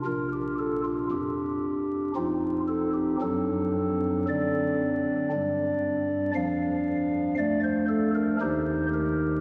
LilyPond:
<<
  \new Staff \with { instrumentName = "Pipe organ" } { \time 3/4 \key bes \major \tempo 4 = 58 << { bes'16 g'16 a'16 f'16 g'4 f'8 a'16 g'16 | a'4 d''2 | f''4 d''16 c''16 a'16 bes'16 c''8 bes'8 | } \\ { <d' f'>2 <c' ees'>4 | <c' d'>2 d'4 | d'2 <ees' g'>4 | } >> }
  \new Staff \with { instrumentName = "Pipe organ" } { \clef bass \time 3/4 \key bes \major <bes,, bes,>4 f,4 <f, f>4 | <fis, fis>4 d4 <g, g>4 | <f, f>4 a4 <ees, ees>4 | }
>>